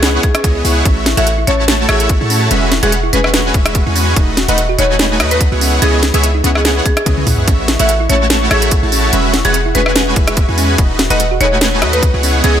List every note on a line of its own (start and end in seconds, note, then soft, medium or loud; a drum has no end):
0.00 0.19 C#2 loud
0.00 0.21 B3 medium
0.00 0.13 C#4 medium
0.00 0.21 E4 medium
0.00 0.21 G#4 medium
0.00 0.22 G#4 medium
0.00 0.84 B4 medium
0.00 0.21 C#5 medium
0.00 0.82 D#5 medium
0.00 4.13 E5 medium
0.00 0.21 F#5 loud
0.00 2.48 C#6 medium
0.00 snare loud
0.00 closed hi-hat medium
0.23 0.28 D#4 medium
0.23 0.31 G#4 medium
0.23 kick loud
0.23 closed hi-hat medium
0.35 0.38 C#4 medium
0.35 0.41 G#4 medium
0.35 cross-stick medium
0.35 closed hi-hat medium
0.44 0.63 C#2 medium
0.44 0.63 B3 medium
0.44 0.51 E4 loud
0.44 0.63 E4 medium
0.44 0.63 G#4 medium
0.44 0.63 C#5 medium
0.44 0.63 D#5 medium
0.44 kick loud
0.44 closed hi-hat medium
0.55 0.61 G#4 medium
0.65 0.84 C#2 loud
0.65 0.83 B3 medium
0.65 0.72 E4 loud
0.65 0.83 E4 medium
0.65 0.83 G#4 medium
0.65 0.83 C#5 medium
0.65 0.83 F#5 loud
0.65 open hi-hat medium
0.85 1.15 A1 loud
0.85 1.05 A3 medium
0.85 0.96 C#4 medium
0.85 1.05 E4 medium
0.85 1.05 F#4 medium
0.85 2.49 A4 medium
0.85 1.05 C#5 medium
0.85 1.05 E5 loud
0.85 5.57 F#5 medium
0.85 kick loud
0.85 closed hi-hat medium
1.06 1.17 E4 medium
1.06 snare medium
1.06 closed hi-hat medium
1.17 1.46 A1 loud
1.17 1.28 A3 medium
1.17 1.28 E4 medium
1.17 1.28 F#4 medium
1.17 1.23 A4 loud
1.17 1.28 C#5 medium
1.17 1.34 E5 medium
1.17 1.28 F#5 loud
1.17 closed hi-hat medium
1.27 1.34 A4 medium
1.27 closed hi-hat medium
1.38 1.42 E4 loud
1.47 1.87 A1 medium
1.47 1.87 A3 medium
1.47 1.58 C#4 loud
1.47 1.87 E4 medium
1.47 1.87 F#4 medium
1.47 1.65 C#5 medium
1.47 1.87 C#5 medium
1.47 1.87 A5 loud
1.47 closed hi-hat medium
1.68 1.79 C#4 medium
1.68 snare loud
1.68 closed hi-hat medium
1.89 2.19 A1 medium
1.89 2.18 A3 medium
1.89 2.00 E4 medium
1.89 2.18 E4 medium
1.89 2.18 F#4 medium
1.89 2.06 G#4 medium
1.89 2.18 C#5 medium
1.89 2.18 E5 medium
1.89 cross-stick medium
1.89 closed hi-hat medium
2.00 2.06 A4 loud
2.00 closed hi-hat medium
2.09 2.17 A4 medium
2.09 kick loud
2.09 closed hi-hat medium
2.21 2.49 A2 medium
2.21 2.49 A3 medium
2.21 2.24 E4 loud
2.21 2.49 E4 medium
2.21 2.49 F#4 medium
2.21 2.49 C#5 medium
2.21 2.49 A5 loud
2.30 2.41 C#4 loud
2.30 open hi-hat medium
2.51 2.81 E1 loud
2.51 2.70 G#3 medium
2.51 2.62 C#4 medium
2.51 2.70 C#4 medium
2.51 2.70 F#4 medium
2.51 4.15 G#4 medium
2.51 2.70 B4 medium
2.51 2.70 E5 loud
2.51 4.15 C#6 medium
2.51 closed hi-hat medium
2.72 2.82 E4 medium
2.72 snare medium
2.72 closed hi-hat medium
2.83 3.11 E1 loud
2.83 2.94 G#3 loud
2.83 2.94 C#4 medium
2.83 2.94 F#4 medium
2.83 2.89 G#4 loud
2.83 2.99 G#4 loud
2.83 2.94 B4 medium
2.83 2.94 F#5 loud
2.83 closed hi-hat medium
2.92 3.00 G#4 medium
2.92 closed hi-hat medium
3.03 3.07 E4 loud
3.13 3.53 E1 medium
3.13 3.52 G#3 medium
3.13 3.24 C#4 loud
3.13 3.52 C#4 medium
3.13 3.52 F#4 medium
3.13 3.20 B4 medium
3.13 3.52 B4 medium
3.13 3.52 G#5 medium
3.13 closed hi-hat medium
3.24 3.30 B4 medium
3.24 cross-stick medium
3.34 3.44 C#4 medium
3.34 snare loud
3.34 closed hi-hat medium
3.54 3.84 E1 medium
3.54 3.84 G#3 medium
3.54 3.84 C#4 medium
3.54 3.65 E4 medium
3.54 3.84 F#4 medium
3.54 3.84 B4 medium
3.54 3.84 E5 medium
3.54 kick loud
3.54 closed hi-hat medium
3.66 3.72 G#4 loud
3.66 cross-stick medium
3.66 closed hi-hat medium
3.75 3.82 G#4 medium
3.75 kick loud
3.75 closed hi-hat medium
3.86 4.15 E2 loud
3.86 4.14 G#3 medium
3.86 4.14 C#4 medium
3.86 3.90 E4 loud
3.86 4.14 F#4 medium
3.86 4.14 B4 medium
3.86 4.14 G#5 loud
3.96 4.06 C#4 loud
3.96 open hi-hat loud
4.16 4.46 D#1 loud
4.16 4.36 A3 medium
4.16 4.27 D#4 medium
4.16 4.36 D#4 medium
4.16 4.36 F#4 medium
4.16 5.60 A4 medium
4.16 4.36 B4 medium
4.16 4.35 D#5 loud
4.16 5.60 D#5 medium
4.16 5.60 B5 medium
4.16 kick loud
4.16 closed hi-hat medium
4.37 4.48 F#4 medium
4.37 snare medium
4.37 closed hi-hat medium
4.48 4.77 D#1 loud
4.48 4.60 A3 loud
4.48 4.60 D#4 medium
4.48 4.60 F#4 medium
4.48 4.55 B4 loud
4.48 4.60 B4 medium
4.48 4.65 D#5 loud
4.48 4.60 F#5 loud
4.48 closed hi-hat medium
4.58 4.65 B4 medium
4.58 closed hi-hat medium
4.69 4.73 F#4 loud
4.79 5.21 D#1 loud
4.79 5.18 A3 loud
4.79 4.89 D#4 loud
4.79 5.18 D#4 medium
4.79 5.18 F#4 medium
4.79 5.18 B4 medium
4.79 4.96 C#5 loud
4.79 5.18 G#5 loud
4.79 closed hi-hat medium
4.99 5.10 D#4 medium
4.99 snare loud
4.99 closed hi-hat medium
5.20 5.50 D#2 medium
5.20 5.49 A3 medium
5.20 5.49 D#4 medium
5.20 5.49 F#4 medium
5.20 5.31 F#4 medium
5.20 5.49 B4 medium
5.20 5.49 D#5 medium
5.20 cross-stick medium
5.20 closed hi-hat medium
5.31 5.37 B4 loud
5.31 5.48 B4 medium
5.31 closed hi-hat medium
5.41 5.48 B4 medium
5.41 kick loud
5.41 closed hi-hat medium
5.52 5.80 C#2 loud
5.52 5.80 B3 medium
5.52 5.80 E4 medium
5.52 5.56 F#4 loud
5.52 5.80 G#4 medium
5.52 5.80 C#5 medium
5.52 5.80 F#5 loud
5.61 5.72 C#4 loud
5.61 7.46 B4 medium
5.61 7.46 D#5 medium
5.61 7.46 E5 medium
5.61 10.75 C#6 medium
5.61 open hi-hat loud
5.82 6.12 C#2 loud
5.82 6.01 B3 medium
5.82 5.93 C#4 medium
5.82 6.01 E4 medium
5.82 6.14 G#4 loud
5.82 6.01 G#4 medium
5.82 6.01 C#5 medium
5.82 6.01 D#5 loud
5.82 closed hi-hat medium
6.03 6.13 D#4 medium
6.03 snare medium
6.03 closed hi-hat medium
6.14 6.42 C#2 loud
6.14 6.25 B3 loud
6.14 6.25 E4 medium
6.14 6.25 G#4 medium
6.14 6.20 G#4 loud
6.14 6.25 C#5 medium
6.14 6.25 E5 loud
6.14 closed hi-hat medium
6.23 6.31 G#4 medium
6.23 closed hi-hat medium
6.35 6.38 D#4 loud
6.44 6.81 C#2 medium
6.44 6.83 B3 medium
6.44 6.55 C#4 loud
6.44 6.83 E4 medium
6.44 6.83 G#4 medium
6.44 6.83 C#5 medium
6.44 6.83 F#5 loud
6.44 closed hi-hat medium
6.55 6.84 G#4 medium
6.55 cross-stick medium
6.65 6.75 C#4 medium
6.65 snare loud
6.65 closed hi-hat medium
6.85 6.90 C#4 medium
6.85 6.93 G#4 medium
6.85 kick loud
6.85 closed hi-hat medium
6.97 7.06 G#4 loud
6.97 7.03 G#4 medium
6.97 cross-stick medium
6.97 closed hi-hat medium
7.06 7.25 C#2 medium
7.06 7.25 B3 medium
7.06 7.13 C#4 loud
7.06 7.25 E4 medium
7.06 7.25 G#4 medium
7.06 7.25 C#5 medium
7.06 7.25 D#5 loud
7.06 kick loud
7.06 closed hi-hat medium
7.06 high tom medium
7.17 7.23 C#4 medium
7.17 high tom medium
7.27 7.46 C#2 medium
7.27 7.45 B3 medium
7.27 7.37 E4 medium
7.27 7.45 E4 medium
7.27 7.45 G#4 medium
7.27 7.45 C#5 medium
7.27 7.45 F#5 loud
7.27 kick medium
7.27 open hi-hat loud
7.27 mid tom medium
7.38 mid tom medium
7.48 7.77 A1 loud
7.48 7.67 A3 medium
7.48 7.58 C#4 medium
7.48 7.67 E4 medium
7.48 7.67 F#4 medium
7.48 9.11 A4 medium
7.48 7.67 C#5 medium
7.48 7.67 E5 loud
7.48 10.75 E5 medium
7.48 12.20 F#5 medium
7.48 kick loud
7.48 closed hi-hat medium
7.68 7.79 E4 medium
7.68 snare medium
7.68 closed hi-hat medium
7.79 8.08 A1 loud
7.79 7.91 A3 loud
7.79 7.91 E4 medium
7.79 7.91 F#4 medium
7.79 7.86 A4 medium
7.79 7.91 C#5 medium
7.79 7.96 E5 medium
7.79 7.90 F#5 loud
7.79 closed hi-hat medium
7.89 7.96 A4 medium
7.89 closed hi-hat medium
8.00 8.04 E4 loud
8.10 8.49 A1 loud
8.10 8.49 A3 medium
8.10 8.20 C#4 loud
8.10 8.49 E4 medium
8.10 8.49 F#4 medium
8.10 8.27 C#5 medium
8.10 8.49 C#5 medium
8.10 8.49 A5 medium
8.10 closed hi-hat medium
8.30 8.41 C#4 medium
8.30 snare loud
8.30 closed hi-hat medium
8.51 8.81 A1 medium
8.51 8.80 A3 medium
8.51 8.80 E4 medium
8.51 8.62 E4 medium
8.51 8.80 F#4 medium
8.51 8.68 G#4 medium
8.51 8.80 C#5 medium
8.51 8.80 E5 medium
8.51 cross-stick medium
8.51 closed hi-hat medium
8.62 8.68 A4 loud
8.62 closed hi-hat medium
8.71 8.79 A4 medium
8.71 kick loud
8.71 closed hi-hat medium
8.83 9.11 A1 loud
8.83 9.11 A3 medium
8.83 9.11 E4 medium
8.83 8.87 E4 loud
8.83 9.11 F#4 medium
8.83 9.11 C#5 medium
8.83 9.11 A5 loud
8.92 9.03 C#4 loud
8.92 open hi-hat medium
9.13 9.43 E1 loud
9.13 9.32 G#3 medium
9.13 9.24 C#4 medium
9.13 9.32 C#4 medium
9.13 9.32 F#4 medium
9.13 10.77 G#4 medium
9.13 9.32 B4 medium
9.13 9.32 E5 loud
9.13 closed hi-hat medium
9.34 9.45 E4 medium
9.34 snare medium
9.34 closed hi-hat medium
9.45 9.73 E1 loud
9.45 9.56 G#3 loud
9.45 9.56 C#4 medium
9.45 9.56 F#4 medium
9.45 9.62 G#4 loud
9.45 9.51 G#4 loud
9.45 9.56 B4 medium
9.45 9.56 F#5 loud
9.45 closed hi-hat medium
9.54 9.62 G#4 medium
9.54 closed hi-hat medium
9.66 9.69 E4 loud
9.75 10.15 E1 medium
9.75 10.14 G#3 medium
9.75 10.14 C#4 medium
9.75 9.86 C#4 loud
9.75 10.14 F#4 medium
9.75 9.82 B4 medium
9.75 10.14 B4 medium
9.75 10.14 G#5 loud
9.75 closed hi-hat medium
9.86 9.92 B4 medium
9.86 cross-stick medium
9.96 10.07 C#4 medium
9.96 snare loud
9.96 closed hi-hat medium
10.16 10.46 E1 medium
10.16 10.46 G#3 medium
10.16 10.46 C#4 medium
10.16 10.27 E4 medium
10.16 10.46 F#4 medium
10.16 10.46 B4 medium
10.16 10.46 E5 medium
10.16 kick loud
10.16 closed hi-hat medium
10.28 10.34 G#4 loud
10.28 cross-stick medium
10.28 closed hi-hat medium
10.37 10.44 G#4 medium
10.37 kick loud
10.37 closed hi-hat medium
10.48 10.77 E2 loud
10.48 10.76 G#3 medium
10.48 10.76 C#4 medium
10.48 10.52 E4 loud
10.48 10.76 F#4 medium
10.48 10.76 B4 medium
10.48 10.76 G#5 loud
10.58 10.69 C#4 loud
10.58 open hi-hat medium
10.78 11.08 D#1 loud
10.78 10.97 A3 medium
10.78 10.97 D#4 medium
10.78 10.89 D#4 medium
10.78 10.97 F#4 medium
10.78 12.22 A4 medium
10.78 10.97 B4 medium
10.78 12.60 D#5 medium
10.78 12.22 B5 medium
10.78 kick loud
10.78 closed hi-hat medium
10.99 11.10 F#4 medium
10.99 snare medium
10.99 closed hi-hat medium
11.10 11.39 D#1 loud
11.10 11.21 A3 loud
11.10 11.21 D#4 medium
11.10 11.21 F#4 medium
11.10 11.21 B4 medium
11.10 11.17 B4 medium
11.10 11.27 D#5 medium
11.10 11.21 F#5 loud
11.10 closed hi-hat medium
11.20 11.27 B4 medium
11.20 closed hi-hat medium
11.31 11.35 F#4 loud
11.41 11.83 D#1 loud
11.41 11.80 A3 medium
11.41 11.80 D#4 medium
11.41 11.51 D#4 loud
11.41 11.80 F#4 medium
11.41 11.80 B4 medium
11.41 11.58 C#5 medium
11.41 11.80 G#5 loud
11.41 closed hi-hat medium
11.61 11.72 D#4 medium
11.61 snare loud
11.61 closed hi-hat medium
11.82 12.12 D#2 medium
11.82 12.11 A3 medium
11.82 12.11 D#4 medium
11.82 11.93 F#4 medium
11.82 12.11 F#4 medium
11.82 12.11 B4 medium
11.82 12.11 D#5 medium
11.82 cross-stick medium
11.82 closed hi-hat medium
11.93 12.10 B4 loud
11.93 11.99 B4 loud
11.93 closed hi-hat medium
12.03 12.10 B4 medium
12.03 kick loud
12.03 closed hi-hat medium
12.14 12.42 C#2 loud
12.14 12.42 B3 medium
12.14 12.42 E4 medium
12.14 12.18 F#4 loud
12.14 12.42 G#4 medium
12.14 12.42 C#5 medium
12.14 12.42 F#5 loud
12.23 12.34 C#4 loud
12.23 12.60 B4 medium
12.23 12.60 E5 medium
12.23 12.60 C#6 medium
12.23 open hi-hat medium
12.44 12.60 C#2 loud
12.44 12.60 B3 medium
12.44 12.55 C#4 medium
12.44 12.60 E4 medium
12.44 12.60 G#4 medium
12.44 12.60 C#5 medium
12.44 12.60 D#5 loud
12.44 closed hi-hat medium